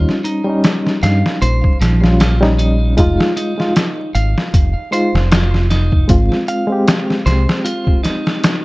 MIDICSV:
0, 0, Header, 1, 5, 480
1, 0, Start_track
1, 0, Key_signature, -4, "minor"
1, 0, Tempo, 779221
1, 1833, Time_signature, 4, 2, 24, 8
1, 5328, End_track
2, 0, Start_track
2, 0, Title_t, "Clean electric guitar"
2, 0, Program_c, 0, 27
2, 0, Note_on_c, 0, 65, 77
2, 130, Note_off_c, 0, 65, 0
2, 150, Note_on_c, 0, 63, 70
2, 610, Note_off_c, 0, 63, 0
2, 633, Note_on_c, 0, 77, 70
2, 852, Note_off_c, 0, 77, 0
2, 873, Note_on_c, 0, 72, 81
2, 1091, Note_off_c, 0, 72, 0
2, 1113, Note_on_c, 0, 53, 73
2, 1332, Note_off_c, 0, 53, 0
2, 1355, Note_on_c, 0, 65, 64
2, 1503, Note_off_c, 0, 65, 0
2, 1593, Note_on_c, 0, 63, 74
2, 1822, Note_off_c, 0, 63, 0
2, 1833, Note_on_c, 0, 65, 76
2, 2051, Note_off_c, 0, 65, 0
2, 2073, Note_on_c, 0, 63, 70
2, 2531, Note_off_c, 0, 63, 0
2, 2554, Note_on_c, 0, 77, 71
2, 3012, Note_off_c, 0, 77, 0
2, 3034, Note_on_c, 0, 72, 68
2, 3252, Note_off_c, 0, 72, 0
2, 3274, Note_on_c, 0, 65, 71
2, 3492, Note_off_c, 0, 65, 0
2, 3514, Note_on_c, 0, 63, 68
2, 3753, Note_off_c, 0, 63, 0
2, 3994, Note_on_c, 0, 77, 70
2, 4452, Note_off_c, 0, 77, 0
2, 4471, Note_on_c, 0, 72, 76
2, 4691, Note_off_c, 0, 72, 0
2, 4710, Note_on_c, 0, 65, 80
2, 4930, Note_off_c, 0, 65, 0
2, 4949, Note_on_c, 0, 63, 70
2, 5328, Note_off_c, 0, 63, 0
2, 5328, End_track
3, 0, Start_track
3, 0, Title_t, "Reed electric piano"
3, 0, Program_c, 1, 4
3, 0, Note_on_c, 1, 55, 74
3, 0, Note_on_c, 1, 61, 66
3, 0, Note_on_c, 1, 63, 82
3, 252, Note_off_c, 1, 55, 0
3, 256, Note_off_c, 1, 61, 0
3, 260, Note_off_c, 1, 63, 0
3, 275, Note_on_c, 1, 55, 89
3, 288, Note_on_c, 1, 61, 85
3, 306, Note_on_c, 1, 63, 100
3, 1214, Note_off_c, 1, 55, 0
3, 1220, Note_off_c, 1, 61, 0
3, 1230, Note_off_c, 1, 63, 0
3, 1239, Note_on_c, 1, 55, 75
3, 1248, Note_on_c, 1, 61, 68
3, 1254, Note_on_c, 1, 65, 84
3, 1451, Note_off_c, 1, 55, 0
3, 1455, Note_off_c, 1, 61, 0
3, 1458, Note_off_c, 1, 65, 0
3, 1482, Note_on_c, 1, 55, 94
3, 1490, Note_on_c, 1, 61, 83
3, 1495, Note_on_c, 1, 63, 104
3, 1805, Note_off_c, 1, 55, 0
3, 1809, Note_off_c, 1, 61, 0
3, 1811, Note_off_c, 1, 63, 0
3, 1829, Note_on_c, 1, 56, 99
3, 1838, Note_on_c, 1, 63, 86
3, 1847, Note_on_c, 1, 65, 100
3, 2173, Note_off_c, 1, 56, 0
3, 2177, Note_off_c, 1, 63, 0
3, 2182, Note_off_c, 1, 65, 0
3, 2203, Note_on_c, 1, 56, 85
3, 2211, Note_on_c, 1, 63, 76
3, 2220, Note_on_c, 1, 65, 96
3, 2293, Note_off_c, 1, 56, 0
3, 2297, Note_off_c, 1, 63, 0
3, 2301, Note_off_c, 1, 65, 0
3, 3025, Note_on_c, 1, 56, 78
3, 3034, Note_on_c, 1, 63, 72
3, 3041, Note_on_c, 1, 65, 90
3, 3198, Note_off_c, 1, 56, 0
3, 3203, Note_off_c, 1, 63, 0
3, 3206, Note_off_c, 1, 65, 0
3, 3743, Note_on_c, 1, 56, 73
3, 3751, Note_on_c, 1, 60, 68
3, 3761, Note_on_c, 1, 65, 82
3, 4090, Note_off_c, 1, 56, 0
3, 4094, Note_off_c, 1, 60, 0
3, 4099, Note_off_c, 1, 65, 0
3, 4110, Note_on_c, 1, 56, 95
3, 4125, Note_on_c, 1, 60, 86
3, 4141, Note_on_c, 1, 67, 104
3, 5328, Note_off_c, 1, 56, 0
3, 5328, Note_off_c, 1, 60, 0
3, 5328, Note_off_c, 1, 67, 0
3, 5328, End_track
4, 0, Start_track
4, 0, Title_t, "Fingered electric bass"
4, 0, Program_c, 2, 33
4, 633, Note_on_c, 2, 43, 77
4, 751, Note_off_c, 2, 43, 0
4, 873, Note_on_c, 2, 34, 93
4, 991, Note_off_c, 2, 34, 0
4, 1114, Note_on_c, 2, 34, 85
4, 1813, Note_off_c, 2, 34, 0
4, 1834, Note_on_c, 2, 29, 89
4, 1951, Note_off_c, 2, 29, 0
4, 2555, Note_on_c, 2, 32, 76
4, 2672, Note_off_c, 2, 32, 0
4, 2795, Note_on_c, 2, 29, 83
4, 2912, Note_off_c, 2, 29, 0
4, 3169, Note_on_c, 2, 29, 85
4, 3733, Note_off_c, 2, 29, 0
4, 3754, Note_on_c, 2, 32, 92
4, 3871, Note_off_c, 2, 32, 0
4, 4472, Note_on_c, 2, 36, 83
4, 4590, Note_off_c, 2, 36, 0
4, 5328, End_track
5, 0, Start_track
5, 0, Title_t, "Drums"
5, 54, Note_on_c, 9, 38, 35
5, 115, Note_off_c, 9, 38, 0
5, 154, Note_on_c, 9, 42, 60
5, 215, Note_off_c, 9, 42, 0
5, 393, Note_on_c, 9, 42, 78
5, 398, Note_on_c, 9, 38, 108
5, 455, Note_off_c, 9, 42, 0
5, 459, Note_off_c, 9, 38, 0
5, 533, Note_on_c, 9, 38, 39
5, 595, Note_off_c, 9, 38, 0
5, 635, Note_on_c, 9, 42, 62
5, 639, Note_on_c, 9, 38, 45
5, 697, Note_off_c, 9, 42, 0
5, 701, Note_off_c, 9, 38, 0
5, 775, Note_on_c, 9, 38, 55
5, 836, Note_off_c, 9, 38, 0
5, 876, Note_on_c, 9, 42, 85
5, 937, Note_off_c, 9, 42, 0
5, 1010, Note_on_c, 9, 36, 82
5, 1072, Note_off_c, 9, 36, 0
5, 1118, Note_on_c, 9, 42, 65
5, 1122, Note_on_c, 9, 38, 45
5, 1180, Note_off_c, 9, 42, 0
5, 1184, Note_off_c, 9, 38, 0
5, 1254, Note_on_c, 9, 38, 42
5, 1316, Note_off_c, 9, 38, 0
5, 1357, Note_on_c, 9, 42, 76
5, 1361, Note_on_c, 9, 38, 99
5, 1418, Note_off_c, 9, 42, 0
5, 1423, Note_off_c, 9, 38, 0
5, 1495, Note_on_c, 9, 38, 47
5, 1557, Note_off_c, 9, 38, 0
5, 1597, Note_on_c, 9, 42, 57
5, 1658, Note_off_c, 9, 42, 0
5, 1834, Note_on_c, 9, 42, 79
5, 1835, Note_on_c, 9, 36, 96
5, 1895, Note_off_c, 9, 42, 0
5, 1897, Note_off_c, 9, 36, 0
5, 1974, Note_on_c, 9, 38, 54
5, 2035, Note_off_c, 9, 38, 0
5, 2076, Note_on_c, 9, 42, 68
5, 2137, Note_off_c, 9, 42, 0
5, 2216, Note_on_c, 9, 38, 34
5, 2278, Note_off_c, 9, 38, 0
5, 2316, Note_on_c, 9, 42, 81
5, 2320, Note_on_c, 9, 38, 101
5, 2377, Note_off_c, 9, 42, 0
5, 2381, Note_off_c, 9, 38, 0
5, 2558, Note_on_c, 9, 42, 67
5, 2619, Note_off_c, 9, 42, 0
5, 2696, Note_on_c, 9, 38, 51
5, 2758, Note_off_c, 9, 38, 0
5, 2796, Note_on_c, 9, 36, 101
5, 2796, Note_on_c, 9, 42, 79
5, 2857, Note_off_c, 9, 36, 0
5, 2858, Note_off_c, 9, 42, 0
5, 3037, Note_on_c, 9, 42, 66
5, 3099, Note_off_c, 9, 42, 0
5, 3174, Note_on_c, 9, 38, 45
5, 3236, Note_off_c, 9, 38, 0
5, 3274, Note_on_c, 9, 42, 82
5, 3279, Note_on_c, 9, 38, 112
5, 3336, Note_off_c, 9, 42, 0
5, 3340, Note_off_c, 9, 38, 0
5, 3414, Note_on_c, 9, 38, 41
5, 3476, Note_off_c, 9, 38, 0
5, 3515, Note_on_c, 9, 42, 59
5, 3519, Note_on_c, 9, 38, 43
5, 3577, Note_off_c, 9, 42, 0
5, 3581, Note_off_c, 9, 38, 0
5, 3648, Note_on_c, 9, 36, 91
5, 3710, Note_off_c, 9, 36, 0
5, 3751, Note_on_c, 9, 42, 79
5, 3753, Note_on_c, 9, 36, 105
5, 3813, Note_off_c, 9, 42, 0
5, 3815, Note_off_c, 9, 36, 0
5, 3892, Note_on_c, 9, 38, 36
5, 3954, Note_off_c, 9, 38, 0
5, 3993, Note_on_c, 9, 42, 64
5, 4055, Note_off_c, 9, 42, 0
5, 4235, Note_on_c, 9, 42, 82
5, 4239, Note_on_c, 9, 38, 104
5, 4297, Note_off_c, 9, 42, 0
5, 4301, Note_off_c, 9, 38, 0
5, 4375, Note_on_c, 9, 38, 40
5, 4437, Note_off_c, 9, 38, 0
5, 4476, Note_on_c, 9, 42, 65
5, 4481, Note_on_c, 9, 38, 45
5, 4538, Note_off_c, 9, 42, 0
5, 4542, Note_off_c, 9, 38, 0
5, 4615, Note_on_c, 9, 38, 57
5, 4676, Note_off_c, 9, 38, 0
5, 4716, Note_on_c, 9, 42, 81
5, 4777, Note_off_c, 9, 42, 0
5, 4848, Note_on_c, 9, 36, 89
5, 4910, Note_off_c, 9, 36, 0
5, 4956, Note_on_c, 9, 42, 72
5, 4960, Note_on_c, 9, 38, 44
5, 5018, Note_off_c, 9, 42, 0
5, 5022, Note_off_c, 9, 38, 0
5, 5094, Note_on_c, 9, 38, 48
5, 5155, Note_off_c, 9, 38, 0
5, 5196, Note_on_c, 9, 42, 81
5, 5200, Note_on_c, 9, 38, 102
5, 5258, Note_off_c, 9, 42, 0
5, 5262, Note_off_c, 9, 38, 0
5, 5328, End_track
0, 0, End_of_file